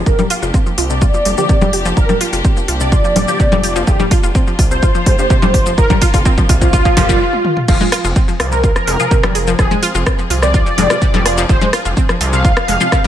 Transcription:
0.06 F1 F3 A#3 D4 G4 A#4, kick, shaker
0.19 G3, low conga, shaker
0.30 F4, open hi-hat
0.42 F1 F4, shaker
0.54 C4, kick, shaker
0.66 F3, shaker
0.78 C2 F4, open hi-hat
0.90 C3 D5, shaker
1.02 F4, kick, shaker
1.14 F3, shaker
1.25 F1 G3, open hi-hat
1.38 D3 F3 A#3 G4, shaker
1.49 C3, kick, shaker
1.61 F1 G3, low conga, shaker
1.73 G4, open hi-hat
1.85 F3, shaker
1.97 F1 F3 A#4, kick, shaker
2.09 G3, low conga, shaker
2.21 F4, open hi-hat
2.33 F1 F4, open hi-hat, shaker
2.44 C4, kick, shaker
2.57 F3, shaker
2.68 C2 F4, open hi-hat
2.80 C3 D5, shaker
2.92 F4, kick, shaker
3.04 F3, shaker
3.16 F1 G3, open hi-hat, low conga
3.28 D3 F3 A#3 G4, shaker
3.40 C3, kick, shaker
3.52 F1 G3, low conga, shaker
3.64 G4, open hi-hat
3.76 F3, shaker
3.87 F1 F3 F4 G4, kick, shaker
4.00 G3, low conga, shaker
4.11 F4, kick, open hi-hat
4.23 F1 F4, shaker
4.35 C4, kick, shaker
4.47 F3, shaker
4.59 C2 F4, kick, open hi-hat
4.71 C3 C5, shaker
4.83 F4, kick, shaker
4.95 F3, shaker
5.06 F1 G3, kick, open hi-hat
5.19 D3 F3 A#3 G4, shaker
5.30 C3, kick, shaker
5.42 F1 G3, low conga, shaker
5.54 G4, kick, open hi-hat
5.66 F3, shaker
5.78 F1 F3 A#4, kick, shaker
5.90 G3, kick, low conga, shaker
6.02 F4, kick, open hi-hat
6.14 F1 F4, kick, open hi-hat, shaker
6.25 C4, kick, shaker
6.38 F3, kick, shaker
6.49 C2 F4, kick, open hi-hat
6.61 C3 F4, kick, shaker
6.73 F4, kick, shaker
6.85 F3, kick, shaker
6.97 F1 D3 F3 A#3 G4, kick, open hi-hat, low conga
7.09 G3, kick, shaker
7.33 high tom
7.45 mid tom
7.57 mid tom
7.68 F1 F3 C4 F4 G#4, kick, crash, shaker
7.81 G#3, low conga, shaker
7.92 F4, cross-stick, open hi-hat
8.04 F1 F4, shaker
8.16 C4, kick, shaker
8.28 F3, shaker
8.40 C2 F4, cross-stick, open hi-hat
8.52 C3 A#4, shaker
8.64 F4, kick, shaker
8.76 F3, cross-stick, shaker
8.87 F1 G#3, open hi-hat
9.00 C3 F3 G#3 F4, shaker
9.11 C3, kick, shaker
9.23 F1 G3, cross-stick, low conga, shaker
9.35 G#4, open hi-hat
9.47 F3, shaker
9.59 F1 F3 G#4, kick, cross-stick, shaker
9.71 G#3, low conga, shaker
9.83 F4, open hi-hat
9.95 F1 F4, shaker
10.06 C4, kick, cross-stick, shaker
10.19 F3, shaker
10.30 C2 F4, open hi-hat
10.42 C3 D5, cross-stick, shaker
10.54 F4, kick, shaker
10.66 F3, shaker
10.78 F1 G#3, open hi-hat, low conga
10.90 C3 F3 G#3 F4, cross-stick, shaker
11.02 C3, kick, shaker
11.14 F1 G3, low conga, shaker
11.26 G#4, cross-stick, open hi-hat
11.38 F3, shaker
11.49 F1 F3 D4 C5, kick, shaker
11.61 G#3, low conga, shaker
11.73 F4, cross-stick, open hi-hat
11.85 F1 F4, shaker
11.97 C4, kick, shaker
12.09 F3, cross-stick, shaker
12.21 C2 F4, open hi-hat
12.33 C3 F5, shaker
12.45 F4, kick, shaker
12.57 F3, cross-stick, shaker
12.68 F1 G#3, open hi-hat
12.80 C3 F3 G#3 F4, shaker
12.92 C3, kick, cross-stick, shaker

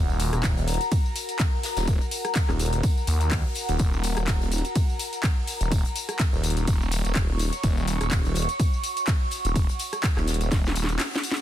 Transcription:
Already playing: D#1 F#5 A#5
0.10 tambourine
0.20 open hi-hat, tambourine
0.33 D#1, cross-stick, closed hi-hat, tambourine
0.44 kick, snare, clap, closed hi-hat, ride, tambourine
0.57 D#1, closed hi-hat, tambourine
0.68 open hi-hat, tambourine
0.74 closed hi-hat
0.81 closed hi-hat, tambourine
0.92 kick, closed hi-hat, ride, tambourine
1.06 tambourine
1.16 open hi-hat, tambourine
1.29 closed hi-hat, tambourine
1.39 kick, snare, clap, closed hi-hat, ride, tambourine
1.63 snare, open hi-hat, tambourine
1.77 D#1, snare, closed hi-hat, tambourine
1.88 kick, closed hi-hat, ride, tambourine
2.01 closed hi-hat, tambourine
2.11 open hi-hat, tambourine
2.25 cross-stick, closed hi-hat, tambourine
2.35 kick, snare, clap, closed hi-hat, ride, tambourine
2.49 D#1, cross-stick, clap, tambourine
2.59 open hi-hat, tambourine
2.66 closed hi-hat
2.73 closed hi-hat, tambourine
2.83 kick, closed hi-hat, ride, tambourine
2.97 tambourine
3.07 D#2, open hi-hat, tambourine
3.21 closed hi-hat, tambourine
3.31 kick, snare, clap, closed hi-hat, open hi-hat, ride, tambourine
3.55 open hi-hat, tambourine
3.56 tambourine
3.69 D#1, closed hi-hat, tambourine
3.79 D#1, kick, closed hi-hat, ride, tambourine
3.94 tambourine
4.04 open hi-hat, tambourine
4.17 D#1, cross-stick, closed hi-hat, tambourine
4.27 kick, snare, clap, closed hi-hat, ride, tambourine
4.41 D#1, closed hi-hat, tambourine
4.52 open hi-hat, tambourine
4.58 closed hi-hat
4.65 closed hi-hat, tambourine
4.75 kick, closed hi-hat, ride, tambourine
4.90 tambourine
4.99 open hi-hat, tambourine
5.13 closed hi-hat, tambourine
5.23 kick, snare, clap, closed hi-hat, ride, tambourine
5.47 open hi-hat, tambourine
5.61 D#1 C#6, closed hi-hat, tambourine
5.72 kick, closed hi-hat, ride, tambourine
5.85 closed hi-hat, tambourine
5.96 open hi-hat, tambourine
6.09 cross-stick, closed hi-hat, tambourine
6.19 kick, snare, clap, closed hi-hat, ride, tambourine
6.33 D#1, tambourine
6.43 open hi-hat, tambourine
6.50 closed hi-hat
6.57 closed hi-hat, tambourine
6.67 D#1, kick, closed hi-hat, ride, tambourine
6.82 tambourine
6.92 open hi-hat, tambourine
7.05 D#1, closed hi-hat, tambourine
7.15 D#1, kick, snare, clap, closed hi-hat, open hi-hat, ride, tambourine
7.39 open hi-hat, tambourine
7.53 closed hi-hat, tambourine
7.63 D#1, kick, closed hi-hat, ride, tambourine
7.78 tambourine
7.88 open hi-hat, tambourine
8.01 D#1, cross-stick, closed hi-hat, tambourine
8.11 kick, snare, clap, closed hi-hat, ride, tambourine
8.25 D#1, closed hi-hat, tambourine
8.35 open hi-hat, tambourine
8.42 closed hi-hat
8.49 closed hi-hat, tambourine
8.60 kick, closed hi-hat, ride, tambourine
8.74 tambourine
8.84 open hi-hat, tambourine
8.97 closed hi-hat, tambourine
9.07 kick, snare, clap, closed hi-hat, ride, tambourine
9.31 open hi-hat, tambourine
9.45 D#1, closed hi-hat, tambourine
9.55 kick, closed hi-hat, ride, tambourine
9.69 closed hi-hat, tambourine
9.79 open hi-hat, tambourine
9.93 cross-stick, closed hi-hat, tambourine
10.03 kick, snare, clap, closed hi-hat, ride, tambourine
10.17 D#1, cross-stick, clap, tambourine
10.27 snare, open hi-hat, tambourine
10.34 closed hi-hat
10.41 closed hi-hat, tambourine
10.52 D#1, kick, snare, closed hi-hat, ride, tambourine
10.66 snare, tambourine
10.75 D#1, open hi-hat, tambourine
10.84 snare
10.89 closed hi-hat, tambourine
10.99 snare, clap, closed hi-hat, open hi-hat, ride, tambourine
11.13 snare, tambourine
11.23 open hi-hat, tambourine
11.31 snare
11.37 closed hi-hat, tambourine

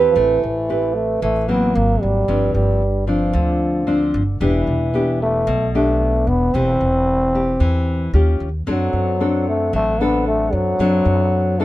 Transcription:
Already playing: E3 C4 G4 B4 C5 A5
0.10 F3
0.15 A1 E3 A3
0.43 A1
0.69 C4 G4 B4
0.95 A3
1.22 A1 E3 A3
1.48 F#3 A#3 B3 C4
1.75 G#1 A#3
2.01 G#1 G3
2.28 G1 G2 F3 C4 D4
2.54 G1 G3
3.07 F3 C4 D4
3.33 D2 D3
3.87 F3 C4 D4
4.14 G1
4.40 E1 E3 B3 D4 G4
4.67 E1
4.94 B3 D4 G4
5.22 A3
5.47 B1 B2
5.75 A3 B3 D4 G4
6.27 E1 B3
6.54 E1 E3 C4 G4
6.81 E1
7.35 C4 G4
7.60 E2 E3
8.14 D#2 C#4 F4 G4
8.40 D#2
8.66 F#2 F#3 C4 D4 A4 C5 F#5
8.70 F#3
8.93 F#2
9.20 C4 D4 A4
9.49 A3
9.73 A1 F#3 A3
10.01 B3 C4 D4 A4
10.28 A3
10.53 F#2 F#3
10.79 F#2 F#3 C4 D4 A4
11.05 F#2
11.60 E3 C4 D4 A4

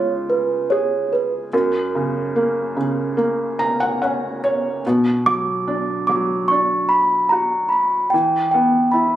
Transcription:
Already playing: C#3 G#3 F4
0.30 B4
0.70 G#4 C#5
1.13 B4
1.53 F#2 A#4
1.95 C#3
2.36 A#3
2.77 C#3
3.17 A#3
3.59 A#5
3.80 F#5
4.02 C#4 F#5
4.44 C#5
4.86 B2
5.26 F#3 D6
5.68 D4
6.07 F#3 D6
6.48 D4 C#6
6.89 B5
7.29 F#4 A#5
7.69 B5
8.10 E3 G5
8.51 B3 G5
8.91 E4 B5

